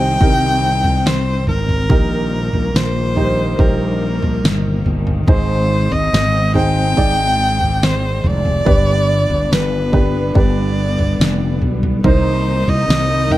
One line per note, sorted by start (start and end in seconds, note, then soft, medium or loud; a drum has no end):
0.00 0.17 C2 medium
0.00 1.92 C3 medium
0.00 1.87 D#3 medium
0.00 1.87 G3 medium
0.00 1.87 C4 medium
0.00 0.20 D#4 medium
0.00 0.21 G4 medium
0.00 1.91 C5 medium
0.00 1.08 G5 loud
0.20 1.44 C2 loud
0.20 1.81 D#4 medium
0.20 1.82 G4 medium
0.20 1.82 A#4 medium
0.20 kick medium
0.20 floor tom medium
0.84 floor tom medium
1.06 1.48 C5 medium
1.06 snare loud
1.47 1.87 G#1 medium
1.47 2.77 A#4 medium
1.47 floor tom medium
1.69 floor tom medium
1.89 2.49 A#1 loud
1.89 3.13 A#2 medium
1.89 8.62 D#3 medium
1.89 5.25 G3 medium
1.89 5.25 A#3 medium
1.89 3.10 D#4 medium
1.89 3.10 G4 medium
1.89 3.11 A#4 medium
1.89 kick loud
1.89 floor tom loud
2.53 2.73 A#1 medium
2.53 floor tom medium
2.74 3.55 A#1 loud
2.74 3.62 C5 medium
2.74 snare loud
3.16 3.56 D#4 medium
3.16 3.57 G4 medium
3.16 3.57 C5 medium
3.16 floor tom medium
3.59 4.39 A#1 loud
3.59 5.19 D#4 medium
3.59 5.20 G4 medium
3.59 4.86 A#4 medium
3.59 5.20 C5 medium
3.59 kick medium
3.59 floor tom medium
4.22 floor tom medium
4.44 4.83 G1 medium
4.44 snare loud
4.86 5.25 G1 medium
4.86 floor tom medium
5.07 floor tom medium
5.27 5.87 G#1 medium
5.27 6.51 G#2 medium
5.27 8.63 G#3 medium
5.27 8.63 C4 medium
5.27 6.48 D#4 medium
5.27 6.48 G#4 medium
5.27 5.94 C5 medium
5.27 6.49 C5 medium
5.27 kick loud
5.27 floor tom loud
5.92 6.11 G#1 medium
5.92 6.55 D#5 loud
5.92 floor tom medium
6.13 6.93 G#1 loud
6.13 snare loud
6.54 6.94 D#4 medium
6.54 6.95 G#4 medium
6.54 6.95 C5 medium
6.54 7.85 G5 loud
6.54 floor tom medium
6.96 8.20 G#1 medium
6.96 8.57 D#4 medium
6.96 8.58 G#4 medium
6.96 8.58 D5 medium
6.96 kick medium
6.96 floor tom medium
7.61 floor tom medium
7.83 8.28 C5 medium
7.83 snare loud
8.24 8.63 F1 medium
8.24 9.54 D5 loud
8.24 floor tom medium
8.45 floor tom medium
8.65 9.26 G1 loud
8.65 9.89 G2 medium
8.65 12.00 D3 medium
8.65 13.38 G3 medium
8.65 12.00 B3 medium
8.65 9.86 D4 medium
8.65 9.86 G4 medium
8.65 9.87 B4 medium
8.65 kick loud
8.65 floor tom loud
9.30 9.49 G1 medium
9.30 floor tom medium
9.51 10.31 G1 medium
9.51 10.36 B4 medium
9.51 snare loud
9.92 10.33 D4 medium
9.92 10.33 G4 medium
9.92 10.33 B4 medium
9.92 kick medium
9.92 floor tom medium
10.35 11.16 G1 medium
10.35 11.95 D4 medium
10.35 11.96 G4 medium
10.35 11.96 B4 medium
10.35 11.59 D5 medium
10.35 kick medium
10.35 floor tom medium
10.99 floor tom medium
11.20 11.59 F1 medium
11.20 snare loud
11.62 12.01 B1 medium
11.62 floor tom medium
11.83 floor tom medium
12.04 12.63 C2 loud
12.04 13.38 C3 medium
12.04 13.27 C3 medium
12.04 13.38 D#3 medium
12.04 13.38 A#3 medium
12.04 13.24 D#4 medium
12.04 13.38 D#4 medium
12.04 13.25 A#4 medium
12.04 12.71 C5 medium
12.04 13.25 C5 medium
12.04 kick loud
12.04 floor tom loud
12.68 12.87 C2 medium
12.68 13.33 D#5 loud
12.68 floor tom medium
12.89 13.38 C2 loud
12.89 snare loud
13.30 13.38 D#4 medium
13.30 13.38 A#4 medium
13.30 13.38 D#5 medium
13.30 13.38 G5 loud
13.30 floor tom medium